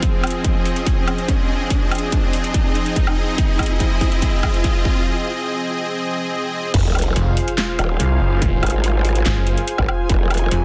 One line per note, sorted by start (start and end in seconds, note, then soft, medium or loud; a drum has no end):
0.00 6.70 F3 medium
0.00 6.70 C4 medium
0.00 5.06 F4 medium
0.00 6.70 G#4 medium
0.00 5.06 C5 medium
0.00 6.70 D#5 medium
0.00 5.06 G#5 medium
0.00 kick medium
0.00 closed hi-hat medium
0.00 riser medium
0.24 closed hi-hat soft
0.24 low woodblock medium
0.27 closed hi-hat medium
0.30 closed hi-hat medium
0.44 kick loud
0.44 closed hi-hat medium
0.65 open hi-hat medium
0.76 closed hi-hat soft
0.86 kick loud
0.86 closed hi-hat medium
1.08 closed hi-hat soft
1.08 low woodblock medium
1.18 closed hi-hat soft
1.28 kick loud
1.28 closed hi-hat medium
1.70 kick loud
1.70 closed hi-hat medium
1.91 closed hi-hat soft
1.91 low woodblock medium
1.95 closed hi-hat medium
1.98 closed hi-hat medium
2.12 kick loud
2.12 closed hi-hat medium
2.33 open hi-hat loud
2.44 closed hi-hat medium
2.54 kick loud
2.54 closed hi-hat medium
2.75 closed hi-hat soft
2.86 closed hi-hat soft
2.96 kick loud
2.96 closed hi-hat medium
3.07 low woodblock medium
3.38 kick loud
3.38 closed hi-hat medium
3.59 kick loud
3.59 closed hi-hat soft
3.59 low woodblock medium
3.63 closed hi-hat medium
3.66 closed hi-hat medium
3.80 kick loud
3.80 closed hi-hat medium
4.01 kick loud
4.01 open hi-hat loud
4.12 closed hi-hat medium
4.22 kick loud
4.22 closed hi-hat medium
4.43 kick loud
4.43 closed hi-hat medium
4.43 low woodblock medium
4.54 closed hi-hat soft
4.64 kick loud
4.64 closed hi-hat medium
4.85 kick loud
6.74 7.14 F1 medium
6.74 10.65 F4 medium
6.74 10.65 G#4 medium
6.74 10.65 C5 medium
6.74 10.08 F5 medium
6.74 kick loud
6.74 closed hi-hat medium
6.74 crash loud
6.74 sub drop medium
6.95 10.65 G#5 medium
6.95 closed hi-hat soft
6.95 low woodblock medium
6.99 closed hi-hat medium
7.02 closed hi-hat medium
7.16 7.35 F1 loud
7.16 closed hi-hat medium
7.21 10.65 C5 medium
7.37 open hi-hat medium
7.48 closed hi-hat medium
7.58 snare loud
7.58 clap medium
7.58 closed hi-hat medium
7.79 7.98 D#1 medium
7.79 closed hi-hat medium
7.79 low woodblock medium
8.00 8.19 C2 loud
8.00 closed hi-hat medium
8.21 8.61 F#1 loud
8.42 kick loud
8.42 closed hi-hat medium
8.63 9.24 G#1 loud
8.63 closed hi-hat soft
8.63 low woodblock medium
8.66 closed hi-hat medium
8.70 closed hi-hat medium
8.84 closed hi-hat medium
9.05 open hi-hat medium
9.15 closed hi-hat medium
9.26 9.35 G#1 medium
9.26 snare loud
9.26 clap loud
9.26 closed hi-hat medium
9.37 9.56 F#1 loud
9.47 closed hi-hat medium
9.57 closed hi-hat soft
9.68 closed hi-hat medium
9.78 9.87 G#1 loud
9.78 kick medium
9.78 low woodblock soft
9.89 low woodblock medium
10.10 10.50 F1 medium
10.10 10.65 G#5 loud
10.10 kick loud
10.10 closed hi-hat medium
10.31 closed hi-hat soft
10.31 low woodblock medium
10.34 closed hi-hat medium
10.37 closed hi-hat medium
10.51 10.65 F1 loud
10.51 closed hi-hat medium